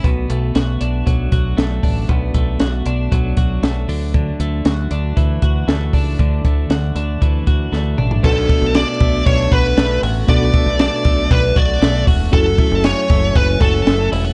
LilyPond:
<<
  \new Staff \with { instrumentName = "Lead electric guitar" } { \time 4/4 \key b \minor \tempo 4 = 117 r1 | r1 | r1 | r1 |
a'4 d''4 cis''8 b'4 r8 | d''4 d''4 b'8 d''4 r8 | a'4 cis''4 b'8 a'4 r8 | }
  \new Staff \with { instrumentName = "Reed electric piano" } { \time 4/4 \key b \minor r1 | r1 | r1 | r1 |
<b d' fis' a'>1 | <b d' fis' a'>1 | <cis' e' fis' a'>1 | }
  \new Staff \with { instrumentName = "Clean electric guitar" } { \time 4/4 \key b \minor b,8 a8 fis'8 d'8 fis8 fis'8 a8 d'8 | b,8 a8 fis'8 d'8 fis8 fis'8 a8 d8 | d8 a8 fis'8 d'8 e8 fis'8 a8 d'8 | d8 a8 fis'8 d'8 e8 fis'8 a8 d'8 |
b,8 a8 d'8 a8 d'8 fis'8 a8 fis'8 | b,8 a8 d'8 a8 d'8 fis'8 a8 fis'8 | fis,8 a8 cis'8 a8 cis'8 fis'8 a8 e'16 fis'16 | }
  \new Staff \with { instrumentName = "Fingered electric bass" } { \clef bass \time 4/4 \key b \minor b,,8 b,,8 b,,8 b,,8 b,,8 b,,8 b,,8 a,,8 | b,,8 b,,8 b,,8 b,,8 b,,8 b,,8 b,,8 d,8~ | d,8 d,8 d,8 d,8 d,8 d,8 d,8 cis,8 | d,8 d,8 d,8 d,8 d,8 d,8 d,8 a,,8 |
b,,8 r16 b,,8 r16 b,,8 b,,8 b,,8 b,,8 a,,8 | b,,8 r16 b,,8 r16 b,,8 b,,8 b,,8 b,,8 e,,8 | fis,,8 r16 fis,,8 r16 fis,,8 fis,,8 fis,,8 fis,,8 e,,8 | }
  \new DrumStaff \with { instrumentName = "Drums" } \drummode { \time 4/4 <hh bd>8 hh8 <hh sn>8 hh8 <hh bd>8 <hh bd>8 <hh sn>8 <hho bd>8 | <hh bd>8 <hh bd>8 <hh sn>8 hh8 <hh bd>8 <hh bd>8 <hh sn>8 hho8 | <hh bd>8 hh8 <hh sn>8 hh8 <hh bd>8 <hh bd>8 <hh sn>8 <hho bd>8 | <hh bd>8 <hh bd>8 <hh sn>8 hh8 <hh bd>8 <hh bd>8 sn8 toml16 tomfh16 |
<cymc bd>8 <bd cymr>8 <cymr sn>8 <bd cymr>8 <bd cymr>8 <bd cymr>8 <cymr sn>8 <hho cymr>8 | <hhp bd cymr>8 <bd cymr>8 <cymr sn>8 <bd cymr>8 <bd cymr>8 <bd cymr>8 <cymr sn>8 <hho bd cymr>8 | <hhp bd cymr>8 <bd cymr>8 <cymr sn>8 <bd cymr>8 <bd cymr>8 <bd cymr>8 <cymr sn>8 <hho cymr>8 | }
>>